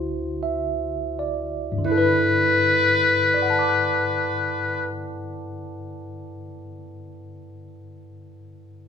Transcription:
0.00 1.83 D2 soft
0.00 1.77 D3 soft
0.00 1.84 E4 soft
0.00 1.87 F#4 soft
0.00 1.89 C5 soft
0.43 1.57 E5 soft
1.19 2.23 D5 soft
1.72 4.78 G2 medium
1.78 4.85 D3 soft
1.85 4.91 E4 soft
1.85 4.89 B4 medium
1.91 4.98 A4 soft
1.98 5.04 B4 medium
3.34 6.36 D5 soft
3.42 6.45 F#5 soft
3.50 6.52 A5 soft
3.59 6.61 D6 soft
3.69 6.71 F#6 soft

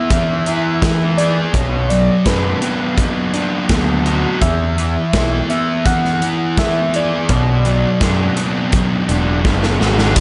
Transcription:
0.00 0.82 B3 medium
0.00 0.46 E4 medium
0.00 1.19 E5 loud
0.10 1.54 E3 medium
0.10 kick loud
0.10 closed hi-hat medium
0.46 1.54 E4 medium
0.46 closed hi-hat medium
0.82 1.36 E3 medium
0.82 2.61 B3 medium
0.82 kick loud
0.82 snare loud
0.82 closed hi-hat medium
1.18 1.54 G#4 medium
1.18 1.56 D5 medium
1.18 closed hi-hat medium
1.54 2.08 B1 loud
1.54 3.34 B2 medium
1.54 1.91 C#5 medium
1.54 kick loud
1.54 closed hi-hat medium
1.90 2.96 F#3 medium
1.90 2.28 D5 medium
1.90 closed hi-hat medium
2.26 2.53 F#2 medium
2.26 3.33 D4 medium
2.26 2.98 B4 medium
2.26 kick loud
2.26 snare medium
2.26 closed hi-hat medium
2.62 3.69 B3 medium
2.62 closed hi-hat medium
2.97 4.41 F#3 medium
2.97 kick loud
2.97 closed hi-hat medium
3.34 4.42 D4 medium
3.34 closed hi-hat medium
3.69 4.24 D2 loud
3.69 5.49 B3 medium
3.69 kick loud
3.69 snare loud
3.69 closed hi-hat medium
4.06 4.42 F#4 medium
4.06 closed hi-hat medium
4.42 4.96 E2 loud
4.42 4.76 E3 medium
4.42 5.46 E5 loud
4.42 kick medium
4.42 closed hi-hat medium
4.78 5.84 E3 medium
4.78 closed hi-hat medium
5.13 5.41 B1 medium
5.13 6.20 E4 medium
5.13 kick medium
5.13 snare loud
5.13 closed hi-hat medium
5.49 6.57 B3 medium
5.49 5.88 E5 loud
5.49 closed hi-hat medium
5.85 7.29 E3 medium
5.85 6.60 F#5 loud
5.85 kick loud
5.85 closed hi-hat medium
6.05 snare soft
6.22 7.29 E4 medium
6.22 closed hi-hat medium
6.58 7.12 E3 medium
6.58 7.30 B3 medium
6.58 6.98 E5 medium
6.58 kick loud
6.58 snare loud
6.58 closed hi-hat medium
6.94 7.30 G#4 medium
6.94 9.46 D5 loud
6.94 closed hi-hat medium
7.29 7.84 B1 loud
7.29 9.09 B2 medium
7.29 kick loud
7.29 closed hi-hat medium
7.65 8.72 F#3 medium
7.65 closed hi-hat medium
8.01 8.28 F#2 medium
8.01 9.07 D4 medium
8.01 kick loud
8.01 snare loud
8.01 closed hi-hat medium
8.37 9.44 B3 medium
8.37 closed hi-hat medium
8.72 10.15 F#3 medium
8.72 kick loud
8.72 closed hi-hat medium
9.09 9.42 E1 medium
9.09 10.17 D4 medium
9.09 closed hi-hat medium
9.45 9.77 F#1 medium
9.45 10.16 B3 medium
9.45 kick loud
9.45 snare medium
9.63 snare medium
9.80 10.13 G#1 medium
9.80 10.17 F#4 medium
9.80 snare medium
9.99 snare medium
10.15 10.20 A1 loud
10.15 10.20 A2 medium
10.15 10.20 E3 medium
10.15 kick loud
10.15 crash loud

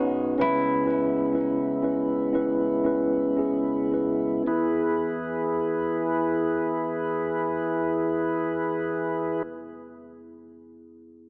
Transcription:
0.00 0.35 B1 medium
0.00 0.35 B2 soft
0.00 0.36 B2 medium
0.00 4.44 B3 soft
0.00 0.36 C#4 soft
0.00 0.38 C#4 medium
0.00 0.36 D#4 medium
0.00 0.41 D#4 medium
0.00 0.41 F#4 medium
0.00 0.44 F#4 medium
0.00 0.40 B4 medium
0.00 0.41 C#5 medium
0.38 4.43 C#2 soft
0.38 4.43 C#3 soft
0.38 4.43 G#3 soft
0.38 0.83 C#4 medium
0.38 4.43 E4 medium
0.38 0.84 E4 medium
0.38 3.34 E4 medium
0.38 0.84 B4 medium
0.85 1.31 C#4 medium
0.85 1.32 E4 soft
0.85 1.32 B4 medium
1.33 1.80 C#4 medium
1.33 1.80 E4 soft
1.33 1.81 B4 soft
1.82 2.30 C#4 medium
1.82 2.30 E4 medium
1.82 2.31 B4 medium
2.33 2.82 C#4 medium
2.33 2.82 E4 medium
2.33 2.83 B4 medium
2.84 3.34 C#4 medium
2.84 3.35 E4 medium
2.84 3.35 B4 medium
3.37 3.88 C#4 medium
3.37 3.89 E4 soft
3.37 3.89 G#4 medium
3.92 4.44 C#4 soft
3.92 4.45 E4 soft
3.92 4.45 B4 medium
4.44 9.42 E3 soft
4.44 9.39 B3 soft
4.44 9.43 E4 soft
4.44 9.42 G#4 soft
4.44 9.43 B4 soft
4.48 9.43 E2 soft
4.48 9.47 G#4 medium

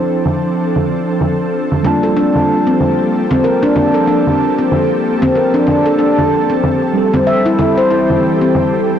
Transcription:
0.00 1.81 F3 medium
0.00 6.92 F3 medium
0.00 6.91 C4 medium
0.00 1.82 D4 medium
0.00 8.99 A4 medium
0.00 1.83 C5 medium
0.12 shaker soft
0.26 low conga medium
0.26 shaker medium
0.44 closed hi-hat soft
0.57 closed hi-hat soft
0.57 shaker soft
0.76 low conga medium
0.76 shaker soft
0.89 closed hi-hat soft
0.89 shaker medium
1.08 closed hi-hat soft
1.08 shaker soft
1.21 low conga medium
1.21 shaker soft
1.53 closed hi-hat soft
1.53 shaker medium
1.72 closed hi-hat soft
1.72 low conga medium
1.72 shaker soft
1.83 6.91 G3 medium
1.83 6.92 A#3 medium
1.83 6.92 C4 medium
1.83 2.03 D4 medium
1.83 6.93 F4 medium
1.83 6.91 G4 medium
1.83 6.93 A5 medium
1.83 closed hi-hat soft
1.83 low conga medium
1.83 shaker soft
2.03 2.16 A4 medium
2.03 shaker soft
2.17 2.35 D4 medium
2.35 closed hi-hat soft
2.35 low conga medium
2.35 shaker soft
2.49 closed hi-hat soft
2.49 shaker soft
2.67 3.29 C4 medium
2.67 shaker soft
2.81 low conga medium
2.81 shaker medium
2.99 closed hi-hat soft
3.12 closed hi-hat soft
3.12 shaker soft
3.31 3.43 C4 medium
3.31 low conga medium
3.31 shaker soft
3.44 3.55 A#4 medium
3.44 closed hi-hat soft
3.44 shaker medium
3.63 3.75 D4 medium
3.63 closed hi-hat soft
3.63 shaker soft
3.76 3.94 D4 medium
3.76 low conga medium
3.76 shaker soft
3.94 4.07 A4 medium
4.07 4.26 D4 medium
4.07 closed hi-hat soft
4.27 closed hi-hat soft
4.27 low conga medium
4.27 shaker soft
4.40 closed hi-hat soft
4.40 shaker soft
4.59 5.21 C4 medium
4.72 low conga medium
4.72 shaker medium
4.91 closed hi-hat soft
5.04 closed hi-hat soft
5.04 shaker soft
5.22 5.34 C4 medium
5.22 low conga medium
5.22 shaker soft
5.35 5.46 A#4 medium
5.35 shaker medium
5.54 5.66 D4 medium
5.54 closed hi-hat soft
5.67 5.85 D4 medium
5.67 closed hi-hat soft
5.67 low conga medium
5.67 shaker soft
5.86 5.99 A4 medium
5.99 6.17 D4 medium
5.99 closed hi-hat soft
5.99 shaker medium
6.19 closed hi-hat soft
6.19 low conga medium
6.19 shaker soft
6.32 shaker soft
6.50 6.95 C4 medium
6.64 closed hi-hat soft
6.64 low conga medium
6.64 shaker medium
6.82 closed hi-hat soft
6.82 shaker soft
6.93 8.99 E3 medium
6.93 8.99 G3 medium
6.93 8.99 C4 medium
6.93 8.99 G4 medium
6.93 closed hi-hat soft
6.93 shaker soft
6.98 8.99 A4 medium
7.14 7.26 C4 medium
7.14 low conga medium
7.14 shaker soft
7.27 7.38 E5 medium
7.27 shaker medium
7.46 7.57 E4 medium
7.46 closed hi-hat soft
7.59 7.77 E4 medium
7.59 closed hi-hat soft
7.59 low conga medium
7.59 shaker soft
7.78 7.90 C5 medium
7.78 shaker soft
7.91 8.09 E4 medium
7.91 shaker medium
8.10 closed hi-hat soft
8.10 low conga medium
8.10 shaker soft
8.23 closed hi-hat soft
8.23 shaker soft
8.41 8.99 C4 medium
8.41 shaker soft
8.55 closed hi-hat medium
8.55 low conga medium
8.55 shaker medium
8.74 closed hi-hat soft
8.87 shaker soft

